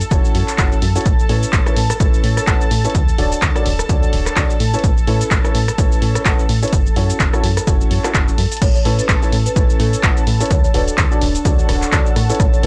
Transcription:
Already playing: A4 A5
0.01 closed hi-hat, shaker
0.11 F#1 C#4 E4 F#4 A4 C#5, kick, closed hi-hat, shaker
0.25 shaker
0.35 F#2, open hi-hat
0.48 clap, closed hi-hat, shaker
0.58 F#1 C#4 E4 F#4 A4 F#5, kick, clap, closed hi-hat, shaker
0.72 shaker
0.82 F#2, open hi-hat
0.96 C#4 E4 F#4 A4 C#5, closed hi-hat, shaker
1.01 closed hi-hat
1.06 A1, kick, closed hi-hat, shaker
1.19 shaker
1.29 A2 C#4 E4 A4 B4 C#5, open hi-hat
1.43 closed hi-hat, shaker
1.53 A1, kick, clap, closed hi-hat, shaker
1.66 C#4 E4 A4 B4 C#5, cross-stick, shaker
1.77 A2, open hi-hat
1.90 cross-stick, closed hi-hat, shaker
2.00 A1 C#4 E4 A4 B4 C#5, kick, closed hi-hat, shaker
2.14 shaker
2.24 A2, open hi-hat
2.37 cross-stick, closed hi-hat, shaker
2.47 A1 C#4 E4 A4 B4 F#5, kick, clap, closed hi-hat, shaker
2.61 shaker
2.71 A2, open hi-hat
2.85 C#4 E4 A4 B4 C#5, closed hi-hat, shaker
2.90 closed hi-hat
2.95 D2, kick, closed hi-hat, shaker
3.08 shaker
3.18 D1 D4 F#4 A4 C#5 D5, open hi-hat
3.32 closed hi-hat, shaker
3.42 D2, kick, clap, closed hi-hat, shaker
3.56 D4 F#4 A4 C#5 D5, cross-stick, shaker
3.66 D1, open hi-hat
3.79 cross-stick, closed hi-hat, shaker
3.89 D2 D4 F#4 A4 C#5 D5, kick, closed hi-hat, shaker
4.03 shaker
4.13 D1, open hi-hat
4.26 cross-stick, clap, closed hi-hat, shaker
4.36 D2 D4 F#4 A4 C#5 D5, kick, clap, closed hi-hat, shaker
4.50 shaker
4.60 A2, open hi-hat
4.74 C#4 E4 A4 B4 C#5, closed hi-hat, shaker
4.79 closed hi-hat
4.84 A1, kick, closed hi-hat, shaker
4.97 shaker
5.07 A2 C#4 E4 A4 B4 C#5, open hi-hat
5.21 closed hi-hat, shaker
5.31 A1, kick, clap, closed hi-hat, shaker
5.44 C#4 E4 A4 B4 C#5, cross-stick, shaker
5.55 A2, open hi-hat
5.68 cross-stick, closed hi-hat, shaker
5.78 A1 C#4 E4 A4 B4 C#5, kick, closed hi-hat, shaker
5.92 shaker
6.02 A2, open hi-hat
6.15 cross-stick, closed hi-hat, shaker
6.25 A1 C#4 E4 A4 B4 F#5, kick, clap, closed hi-hat, shaker
6.39 shaker
6.49 A2, open hi-hat
6.63 C#4 E4 A4 B4 C#5, closed hi-hat, shaker
6.68 closed hi-hat
6.73 F#1, kick, closed hi-hat, shaker
6.86 shaker
6.96 F#2 C#4 E4 F#4 A4 C#5, open hi-hat
7.10 closed hi-hat, shaker
7.20 F#1, kick, clap, closed hi-hat, shaker
7.33 C#4 E4 F#4 A4 C#5, cross-stick, shaker
7.44 F#2, open hi-hat
7.57 cross-stick, closed hi-hat, shaker
7.67 F#1 C#4 E4 F#4 A4 C#5, kick, closed hi-hat, shaker
7.81 shaker
7.91 F#2, open hi-hat
8.04 C#4 E4 F#4 A4 C#5, cross-stick, clap, closed hi-hat, shaker
8.14 F#1 F#4, kick, clap, closed hi-hat, shaker
8.28 shaker
8.38 F#2, open hi-hat
8.52 closed hi-hat, shaker
8.57 closed hi-hat
8.62 A1 C#4 A4 C#5 A5, kick, cross-stick, closed hi-hat, crash, shaker
8.75 C#5, shaker
8.85 A2 C#4 E4 A4 B4 C#5, open hi-hat
8.99 B4, closed hi-hat, shaker
9.09 A1, kick, clap, closed hi-hat, shaker
9.22 C#4 E4 A4 B4 C#5, shaker
9.31 A2 B4, open hi-hat
9.44 B4 A5, closed hi-hat, shaker
9.56 A1 C#4 E4 A4 B4 C#5, kick, closed hi-hat, shaker
9.70 shaker
9.80 A2 A4, open hi-hat
9.93 closed hi-hat, shaker
10.03 A1 C#4 E4 A4 B4 F#5, kick, clap, closed hi-hat, shaker
10.17 shaker
10.27 A2, open hi-hat
10.40 C#4 E4 A4 B4 C#5, closed hi-hat, shaker
10.46 closed hi-hat
10.51 D2 D4 C#5, kick, cross-stick, closed hi-hat, shaker
10.64 C#5, shaker
10.74 D1 D4 F#4 A4 B4 C#5 D5, open hi-hat
10.88 closed hi-hat, shaker
10.98 D2, kick, clap, closed hi-hat, shaker
11.11 D4 F#4 A4 C#5 D5, shaker
11.18 D1 F#5 C#6, open hi-hat
11.35 closed hi-hat, shaker
11.45 D2 D4 F#4 A4 C#5 D5, kick, closed hi-hat, shaker
11.59 shaker
11.69 D1, cross-stick, open hi-hat
11.82 clap, closed hi-hat, shaker
11.92 D2 D4 F#4 A4 C#5 D5, kick, clap, closed hi-hat, shaker
12.06 shaker
12.16 A2 C#4, cross-stick, open hi-hat
12.30 C#4 E4 A4 B4 C#5, closed hi-hat, shaker
12.35 closed hi-hat
12.40 A1 B4 C#5, kick, cross-stick, closed hi-hat, shaker
12.53 C#5, shaker
12.61 A2 C#4 E4 A4 B4 C#5 A5, open hi-hat

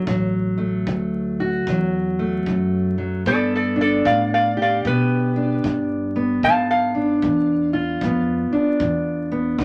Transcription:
Already playing: A3
0.07 A1 D2 F#3, kick
0.58 A3
0.87 D2, kick
1.40 F#4
1.67 D2 E2 F#3, kick
2.19 A3
2.46 D2 F#2, kick
2.98 F#3
3.26 G2 B3 A4 D5, kick
3.55 A4 D5
3.76 D4
3.81 A4 D5
4.05 G2 A2 D5 F5, kick
4.34 D5 F5
4.57 G4
4.62 D5 F5
4.85 G2 B2 B3 B4, kick
5.36 D4
5.64 G2, kick
6.16 B3
6.43 G#2 B3 F5 A5, kick
6.71 F5
6.95 D4
7.22 E2 G#2, kick
7.73 F4
8.01 F2 G#2 B3, kick
8.51 D4, muted upright bass stroke
8.80 E2 G#2, kick
9.32 B3
9.59 D2 F#3, kick

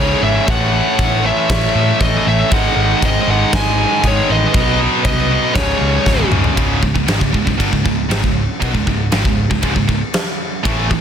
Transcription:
Already playing: C#2 G#2 C#3
0.00 G#4 C#5
0.21 G#1 C#2 G#2 C#3 C#5 E5
0.46 A1 A2 E3 A3 C#5, kick, crash
0.50 F#5
0.72 A2 E3 A3
0.98 A1 A2 E3 A3, kick, crash
1.23 A2 E3 A3 C#5 E5
1.49 A1 A2 E3 A3, kick, snare, crash
1.74 A2 E3 A3
1.98 A1 A2 E3 A3 D#5, kick, crash
2.04 A4
2.25 A1 A2 E3 A3 E5
2.30 C#5
2.50 G#1 G#2 D#3 G#3 F#5, kick, crash
2.54 D#5
2.75 G#1 G#2 D#3 G#3
3.01 G#1 G#2 D#3 G#3, kick, crash
3.06 C5 D#5
3.26 G#1 G#2 D#3 G#3
3.30 G#2 D#5 F#5
3.51 G#1 G#2 D#3 G#3, kick, snare, crash
3.55 D#5 G#5
3.77 G#2 D#3 G#3
4.03 G#2 D#3 G#3 G#4, kick, crash
4.07 C#5
4.27 A1 G#2 D#3 G#3 B4
4.32 D#5
4.53 B1 B2 F#3 B3, kick, crash
4.78 B2 F#3 B3
5.03 C2 B2 F#3 B3 B4 D#5, kick, crash
5.28 B2 F#3 B3
5.32 B2
5.54 C#1 C#2 G#2 C#3 G#4 C#5, kick, snare, crash
5.79 C#2 G#2 C#3
6.04 C#1 C#2 G#2 C#3, kick, snare
6.19 high tom
6.30 C#1 C#2 G#2 C#3, mid tom
6.34 C#2
6.44 floor tom
6.56 C#1 C#2 G#2 C#3, kick, ride bell
6.82 C#1 C#2 G#2, kick
6.94 C#1 C#2 G#2, kick
7.06 G#1 G#2 D#3, snare, ride bell
7.20 C#1 C#2 G#2, kick
7.32 C#1 C#2 G#2, kick
7.45 C#1 C#2 G#2, kick
7.58 G1 G2 D3, kick, ride bell
7.71 C#1 C#2 G#2, kick
7.84 C#1 C#2 G#2, kick
8.10 G#1 G#2 D#3, snare, ride bell
8.23 C#1 C#2 G#2, kick
8.60 B1 B2 F#3, kick, ride bell
8.73 C#1 C#2 G#2, kick
8.87 C#1 C#2 G#2, kick
9.12 G#1 G#2 D#3, snare, ride bell
9.24 C#1 C#2 G#2, kick
9.50 C#1 C#2 G#2, kick
9.62 C#1 C#2 G#2, kick, ride bell
9.75 C#1 C#2 G#2, kick
9.88 C#1 C#2 G#2, kick
10.14 snare, ride bell
10.64 A1 A2 E3 A3, kick, ride bell
10.90 A1 A2 E3, kick

